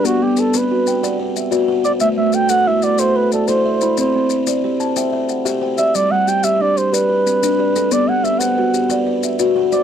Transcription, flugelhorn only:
\new Staff \with { instrumentName = "Flugelhorn" } { \time 12/8 \key b \phrygian \tempo 4. = 122 fis'8 g'8 a'8 b'2 r2 d''8 | e''8 e''8 g''8 fis''8 e''8 d''8 c''8 b'8 a'8 c''4. | c''4. r1 e''8 | d''8 fis''8 g''8 e''8 d''8 c''8 b'2. |
d''8 fis''8 e''8 fis''2 r2 d''8 | }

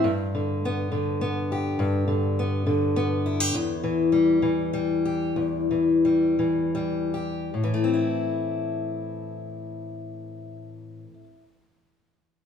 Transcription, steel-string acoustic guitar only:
\new Staff \with { instrumentName = "Steel-string acoustic guitar" } { \clef bass \time 3/4 \key a \minor \tempo 4 = 93 << { r4 b4 b8 g'8 | r4 b4 b8 e'16 g'16 | r4 g4 g8 g'8 | r4 g4 g8 g'8 |
<e a c' e'>2.~ | <e a c' e'>2. | } \\ { g,8 d4 d4. | g,8 d4 d4. | e,8 e4 e4. | e,8 e4 e4. |
a,2.~ | a,2. | } >> }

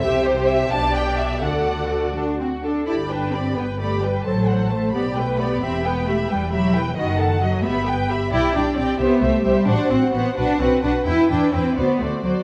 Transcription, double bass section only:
\new Staff \with { instrumentName = "Double bass section" } { \clef bass \time 6/8 \key g \major \tempo 4. = 87 c,4. b,,4. | d,2~ d,8 r8 | g,,4. g,,4. | a,,4. b,,4. |
e,,4. e,,4. | fis,,4. g,,4. | b,,8 b,,8 b,,8 c,8 c,8 c,8 | a,,8 a,,8 a,,8 b,,8 b,,8 b,,8 |
e,8 e,8 e,8 d,8 d,8 d,8 | }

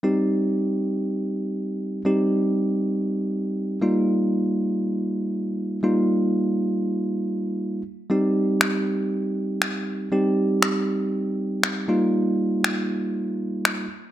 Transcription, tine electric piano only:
\new Staff \with { instrumentName = "Tine electric piano" } { \time 4/4 \key c \minor \tempo 4 = 119 <g c' ees' g'>1 | <g c' ees' g'>2.~ <g c' ees' g'>8 <g bes ees' f'>8~ | <g bes ees' f'>2.~ <g bes ees' f'>8 <g bes ees' f'>8~ | <g bes ees' f'>2.~ <g bes ees' f'>8 r8 |
<g c' ees' g'>1 | <g c' ees' g'>2.~ <g c' ees' g'>8 <g bes ees' f'>8~ | <g bes ees' f'>2.~ <g bes ees' f'>8 r8 | }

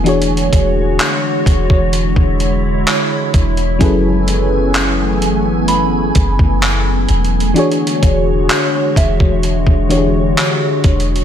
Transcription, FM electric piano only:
\new Staff \with { instrumentName = "FM electric piano" } { \time 4/4 \key e \mixolydian \tempo 4 = 64 <e d' fis' gis' cis''>1 | <fis cis' e' gis' a' b'>1 | <e d' fis' gis' cis''>2~ <e d' fis' gis' cis''>8 <e d' fis' g' gis' cis''>4. | }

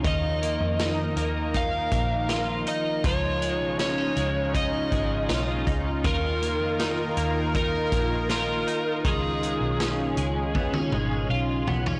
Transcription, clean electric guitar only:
\new Staff \with { instrumentName = "Clean electric guitar" } { \time 4/4 \key dis \minor \tempo 4 = 80 <dis eis'>8 ais8 dis'8 ais8 dis'8 ais8 eis'8 dis'8 | <eis eis'>8 gis8 cis'16 dis'16 gis8 dis'8 gis8 eis'8 dis'8 | <dis eis'>8 ais8 dis'8 ais8 dis'8 ais8 eis'8 dis'8 | <dis eis'>8 gis8 cis'8 gis8 b16 cis'16 gis8 eis'8 b16 cis'16 | }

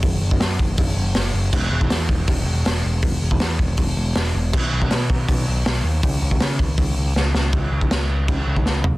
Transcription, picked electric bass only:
\new Staff \with { instrumentName = "Picked electric bass" } { \clef bass \time 4/4 \key cis \minor \tempo 4 = 160 fis,,8 fis,,8 fis,8 fis,,8 fis,,8 fis,,8 fis,,8 fis,,8 | e,,8 e,,8 e,8 e,,8 e,,8 e,,8 e,,8 e,,8 | e,,8 e,,8 e,8 e,,8 e,,8 e,,8 e,,8 e,,8 | b,,8 b,,8 b,8 b,,8 b,,8 b,,8 r8 dis,8 |
cis,8 cis,8 cis8 cis,8 cis,8 cis,8 cis,8 cis,8 | cis,8 cis,8 cis,4 cis,8 cis,8 cis,8 cis,8 | }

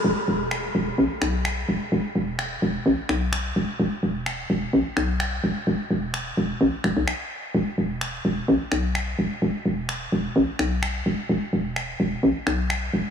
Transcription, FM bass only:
\new Staff \with { instrumentName = "FM bass" } { \clef bass \time 4/4 \key c \major \tempo 4 = 128 e,,16 r16 e,,4 e,,16 r16 a,,16 r16 b,,4 e,,16 r16 | e,,16 r16 e,,4 e,,16 r16 a,,16 r16 b,,4 e,,16 r16 | e,,16 r16 e,,4 e,,16 r16 a,,16 r16 b,,4 e,,16 r16 | e,,16 r16 e,,4 e,,16 r16 a,,16 r16 e,,16 b,,16 r4 |
e,,16 r16 e,,4 e,,16 r16 a,,16 r16 b,,4 e,,16 r16 | e,,16 r16 e,,4 e,,16 r16 a,,16 r16 b,,4 e,,16 r16 | e,,16 r16 e,,4 e,,16 r16 a,,16 r16 b,,4 e,,16 r16 | }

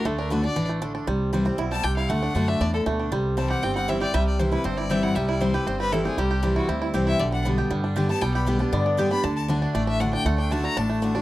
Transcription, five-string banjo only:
\new Staff \with { instrumentName = "Five-string banjo" } { \time 4/4 \key c \lydian \tempo 4 = 235 <a d'>8 d'8 d'8 d'8 d'8 a8 d'8 d'8 | g4 g8 c'8 e'8 g8 g'8 e'8 | a8 d'8 a8 d'8 d'8 d8 a8 d'8 | g4 g8 g'8 c'8 g8 e'8 g'8 |
g4 g8 e'8 c'8 e'8 g'8 e'8 | g8 e'8 g8 g'8 c'8 g8 e'8 g'8 | g8 g'8 g8 e'8 c'8 e'8 g'8 e'8 | d8 d'8 b8 g'8 g8 d'8 g'8 b8 |
g8 g'8 g8 d'8 b8 d'8 g'8 d'8 | d4 d'8 d'8 a8 d'8 d'8 d'8 | a8 d'8 a8 d8 d'8 a8 d'8 d'8 | }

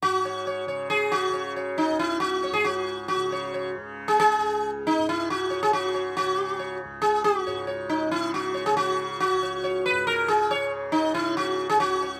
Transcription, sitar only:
\new Staff \with { instrumentName = "Sitar" } { \time 7/4 \tempo 4 = 138 << { r8 cis''8 cis''8 cis''8 r4 cis''8 cis''8 r4. cis''8 r4 | r8 cis''8 cis''8 r8. gis'16 gis'4~ gis'16 r4. r16 cis''8 r8 cis''8 | r4 cis''8 r4. cis''8 cis''8 r4. cis''8 r4 | r8 cis''8 cis''8 b'8 ais'8 gis'8 cis''8 r4 cis''8 r4 cis''8 cis''8 | } \\ { fis'4. r8 gis'8 fis'4 r8 dis'8 e'8 fis'8. gis'16 fis'4 | fis'4. r2 r8 dis'8 e'8 fis'8. gis'16 fis'4 | fis'4. r8 gis'8 fis'4 r8 dis'8 e'8 fis'8. gis'16 fis'4 | fis'4. r2 r8 dis'8 e'8 fis'8. gis'16 fis'4 | } >> }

